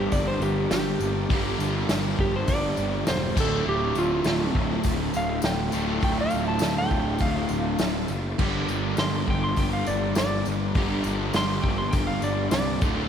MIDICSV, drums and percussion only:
0, 0, Header, 1, 2, 480
1, 0, Start_track
1, 0, Tempo, 591133
1, 1057, Time_signature, 4, 2, 24, 8
1, 10625, End_track
2, 0, Start_track
2, 0, Title_t, "Drums"
2, 95, Note_on_c, 9, 54, 68
2, 99, Note_on_c, 9, 36, 86
2, 99, Note_on_c, 9, 46, 54
2, 176, Note_off_c, 9, 54, 0
2, 180, Note_off_c, 9, 36, 0
2, 180, Note_off_c, 9, 46, 0
2, 339, Note_on_c, 9, 54, 66
2, 420, Note_off_c, 9, 54, 0
2, 575, Note_on_c, 9, 46, 57
2, 576, Note_on_c, 9, 38, 111
2, 579, Note_on_c, 9, 54, 84
2, 656, Note_off_c, 9, 46, 0
2, 657, Note_off_c, 9, 38, 0
2, 660, Note_off_c, 9, 54, 0
2, 816, Note_on_c, 9, 54, 77
2, 897, Note_off_c, 9, 54, 0
2, 1058, Note_on_c, 9, 36, 114
2, 1061, Note_on_c, 9, 46, 63
2, 1139, Note_off_c, 9, 36, 0
2, 1142, Note_off_c, 9, 46, 0
2, 1302, Note_on_c, 9, 54, 74
2, 1383, Note_off_c, 9, 54, 0
2, 1535, Note_on_c, 9, 46, 67
2, 1536, Note_on_c, 9, 38, 124
2, 1538, Note_on_c, 9, 54, 82
2, 1617, Note_off_c, 9, 38, 0
2, 1617, Note_off_c, 9, 46, 0
2, 1619, Note_off_c, 9, 54, 0
2, 1776, Note_on_c, 9, 36, 84
2, 1857, Note_off_c, 9, 36, 0
2, 2011, Note_on_c, 9, 46, 68
2, 2011, Note_on_c, 9, 54, 74
2, 2015, Note_on_c, 9, 36, 90
2, 2092, Note_off_c, 9, 54, 0
2, 2093, Note_off_c, 9, 46, 0
2, 2096, Note_off_c, 9, 36, 0
2, 2250, Note_on_c, 9, 54, 69
2, 2331, Note_off_c, 9, 54, 0
2, 2490, Note_on_c, 9, 54, 100
2, 2492, Note_on_c, 9, 38, 119
2, 2492, Note_on_c, 9, 46, 68
2, 2572, Note_off_c, 9, 54, 0
2, 2573, Note_off_c, 9, 46, 0
2, 2574, Note_off_c, 9, 38, 0
2, 2735, Note_on_c, 9, 36, 116
2, 2735, Note_on_c, 9, 54, 74
2, 2737, Note_on_c, 9, 49, 117
2, 2816, Note_off_c, 9, 36, 0
2, 2816, Note_off_c, 9, 54, 0
2, 2819, Note_off_c, 9, 49, 0
2, 3211, Note_on_c, 9, 54, 81
2, 3292, Note_off_c, 9, 54, 0
2, 3446, Note_on_c, 9, 54, 99
2, 3457, Note_on_c, 9, 38, 114
2, 3457, Note_on_c, 9, 46, 61
2, 3527, Note_off_c, 9, 54, 0
2, 3538, Note_off_c, 9, 46, 0
2, 3539, Note_off_c, 9, 38, 0
2, 3696, Note_on_c, 9, 36, 85
2, 3777, Note_off_c, 9, 36, 0
2, 3926, Note_on_c, 9, 54, 90
2, 3936, Note_on_c, 9, 36, 80
2, 3940, Note_on_c, 9, 46, 62
2, 4007, Note_off_c, 9, 54, 0
2, 4017, Note_off_c, 9, 36, 0
2, 4022, Note_off_c, 9, 46, 0
2, 4171, Note_on_c, 9, 54, 78
2, 4252, Note_off_c, 9, 54, 0
2, 4399, Note_on_c, 9, 54, 112
2, 4416, Note_on_c, 9, 46, 60
2, 4417, Note_on_c, 9, 38, 115
2, 4480, Note_off_c, 9, 54, 0
2, 4497, Note_off_c, 9, 46, 0
2, 4498, Note_off_c, 9, 38, 0
2, 4644, Note_on_c, 9, 54, 81
2, 4725, Note_off_c, 9, 54, 0
2, 4882, Note_on_c, 9, 54, 35
2, 4894, Note_on_c, 9, 36, 108
2, 4896, Note_on_c, 9, 46, 59
2, 4963, Note_off_c, 9, 54, 0
2, 4975, Note_off_c, 9, 36, 0
2, 4977, Note_off_c, 9, 46, 0
2, 5120, Note_on_c, 9, 54, 79
2, 5201, Note_off_c, 9, 54, 0
2, 5352, Note_on_c, 9, 54, 110
2, 5374, Note_on_c, 9, 46, 65
2, 5375, Note_on_c, 9, 38, 116
2, 5433, Note_off_c, 9, 54, 0
2, 5455, Note_off_c, 9, 46, 0
2, 5456, Note_off_c, 9, 38, 0
2, 5604, Note_on_c, 9, 54, 24
2, 5611, Note_on_c, 9, 36, 84
2, 5685, Note_off_c, 9, 54, 0
2, 5693, Note_off_c, 9, 36, 0
2, 5834, Note_on_c, 9, 54, 81
2, 5847, Note_on_c, 9, 46, 60
2, 5851, Note_on_c, 9, 36, 94
2, 5915, Note_off_c, 9, 54, 0
2, 5928, Note_off_c, 9, 46, 0
2, 5933, Note_off_c, 9, 36, 0
2, 6080, Note_on_c, 9, 54, 64
2, 6161, Note_off_c, 9, 54, 0
2, 6322, Note_on_c, 9, 54, 88
2, 6330, Note_on_c, 9, 38, 121
2, 6330, Note_on_c, 9, 46, 66
2, 6403, Note_off_c, 9, 54, 0
2, 6411, Note_off_c, 9, 46, 0
2, 6412, Note_off_c, 9, 38, 0
2, 6563, Note_on_c, 9, 54, 70
2, 6644, Note_off_c, 9, 54, 0
2, 6811, Note_on_c, 9, 57, 97
2, 6814, Note_on_c, 9, 36, 103
2, 6892, Note_off_c, 9, 57, 0
2, 6895, Note_off_c, 9, 36, 0
2, 7053, Note_on_c, 9, 54, 72
2, 7134, Note_off_c, 9, 54, 0
2, 7282, Note_on_c, 9, 54, 90
2, 7293, Note_on_c, 9, 46, 69
2, 7294, Note_on_c, 9, 38, 125
2, 7364, Note_off_c, 9, 54, 0
2, 7374, Note_off_c, 9, 46, 0
2, 7375, Note_off_c, 9, 38, 0
2, 7533, Note_on_c, 9, 36, 86
2, 7614, Note_off_c, 9, 36, 0
2, 7766, Note_on_c, 9, 54, 65
2, 7773, Note_on_c, 9, 36, 88
2, 7773, Note_on_c, 9, 46, 67
2, 7847, Note_off_c, 9, 54, 0
2, 7854, Note_off_c, 9, 36, 0
2, 7854, Note_off_c, 9, 46, 0
2, 8010, Note_on_c, 9, 54, 75
2, 8091, Note_off_c, 9, 54, 0
2, 8244, Note_on_c, 9, 54, 102
2, 8252, Note_on_c, 9, 46, 61
2, 8253, Note_on_c, 9, 38, 123
2, 8326, Note_off_c, 9, 54, 0
2, 8333, Note_off_c, 9, 46, 0
2, 8334, Note_off_c, 9, 38, 0
2, 8489, Note_on_c, 9, 54, 69
2, 8570, Note_off_c, 9, 54, 0
2, 8728, Note_on_c, 9, 46, 61
2, 8732, Note_on_c, 9, 36, 108
2, 8809, Note_off_c, 9, 46, 0
2, 8813, Note_off_c, 9, 36, 0
2, 8963, Note_on_c, 9, 54, 81
2, 9045, Note_off_c, 9, 54, 0
2, 9204, Note_on_c, 9, 54, 88
2, 9210, Note_on_c, 9, 46, 71
2, 9211, Note_on_c, 9, 38, 118
2, 9285, Note_off_c, 9, 54, 0
2, 9291, Note_off_c, 9, 46, 0
2, 9292, Note_off_c, 9, 38, 0
2, 9449, Note_on_c, 9, 36, 84
2, 9530, Note_off_c, 9, 36, 0
2, 9683, Note_on_c, 9, 54, 76
2, 9687, Note_on_c, 9, 46, 64
2, 9690, Note_on_c, 9, 36, 93
2, 9765, Note_off_c, 9, 54, 0
2, 9769, Note_off_c, 9, 46, 0
2, 9771, Note_off_c, 9, 36, 0
2, 9923, Note_on_c, 9, 54, 68
2, 10004, Note_off_c, 9, 54, 0
2, 10160, Note_on_c, 9, 54, 101
2, 10165, Note_on_c, 9, 46, 68
2, 10166, Note_on_c, 9, 38, 112
2, 10241, Note_off_c, 9, 54, 0
2, 10246, Note_off_c, 9, 46, 0
2, 10247, Note_off_c, 9, 38, 0
2, 10405, Note_on_c, 9, 54, 75
2, 10410, Note_on_c, 9, 36, 127
2, 10486, Note_off_c, 9, 54, 0
2, 10491, Note_off_c, 9, 36, 0
2, 10625, End_track
0, 0, End_of_file